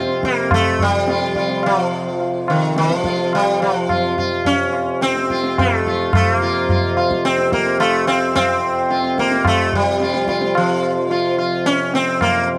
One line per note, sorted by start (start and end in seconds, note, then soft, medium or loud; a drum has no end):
0.00 6.11 F2 medium
0.00 6.11 C3 medium
0.00 0.24 C4 medium
0.00 0.21 F4 soft
0.09 tabla te soft
0.23 0.53 A#3 medium
0.23 tabla ke medium
0.37 tabla te medium
0.51 0.82 A3 medium
0.51 tabla na medium
0.51 tabla ge medium
0.79 1.66 G3 medium
0.79 tabla ge soft
1.08 1.35 F4 soft
1.08 tabla te medium
1.22 tabla te medium
1.35 1.62 F4 soft
1.35 tabla ke medium
1.49 tabla te medium
1.63 2.49 F3 medium
1.63 tabla na medium
2.20 tabla tin medium
2.48 2.77 D#3 medium
2.48 tabla na medium
2.76 2.95 D#3 medium
2.76 tabla te medium
2.90 tabla te medium
2.95 3.34 F3 medium
3.04 3.31 F4 soft
3.04 tabla ke medium
3.18 tabla te soft
3.33 3.62 G3 medium
3.33 tabla na medium
3.60 4.14 F3 medium
3.60 tabla na medium
3.89 4.15 F4 soft
3.89 tabla na medium
3.89 tabla ge medium
4.18 4.44 F4 soft
4.18 tabla ge soft
4.45 5.02 C#4 medium
4.45 tabla tin medium
4.45 tabla ge medium
4.73 tabla na medium
5.01 5.59 C4 medium
5.01 tabla te medium
5.16 tabla te soft
5.30 5.56 F4 soft
5.30 tabla ke medium
5.44 tabla te soft
5.58 6.15 A3 medium
5.58 tabla na medium
5.58 tabla ge medium
5.86 6.12 F4 soft
5.86 tabla ge soft
6.12 12.58 F2 medium
6.12 12.58 C3 medium
6.12 6.35 A3 medium
6.12 tabla na medium
6.12 tabla ge medium
6.35 6.94 A#3 medium
6.42 6.67 F4 soft
6.69 6.95 F4 soft
6.69 tabla tin medium
6.69 tabla ge medium
6.97 7.22 F4 soft
6.97 tabla na medium
7.11 tabla ke medium
7.25 7.52 C4 medium
7.25 tabla te medium
7.38 tabla te soft
7.52 7.79 A#3 medium
7.52 tabla ke medium
7.67 tabla te medium
7.80 8.07 A3 medium
7.80 tabla na medium
8.07 8.34 C4 medium
8.07 tabla na medium
8.35 9.19 C4 loud
8.35 tabla na medium
8.35 tabla ge medium
8.90 9.16 F4 soft
8.90 tabla te medium
9.04 tabla te medium
9.18 9.47 A#3 medium
9.18 tabla ke medium
9.32 tabla te medium
9.45 9.72 A3 medium
9.45 tabla na medium
9.45 tabla ge medium
9.73 10.57 G3 medium
9.73 tabla ge soft
10.00 10.27 F4 soft
10.00 tabla te medium
10.14 tabla te medium
10.28 10.54 F4 soft
10.28 tabla ke medium
10.41 tabla te medium
10.55 11.36 F3 medium
10.55 tabla na medium
10.83 tabla na medium
11.10 11.37 F4 soft
11.10 tabla tin medium
11.38 11.64 F4 soft
11.38 tabla na soft
11.66 11.92 C#4 medium
11.66 tabla te medium
11.94 12.22 C4 medium
11.94 tabla te medium
12.21 12.47 A#3 medium
12.21 tabla na medium
12.21 tabla ge medium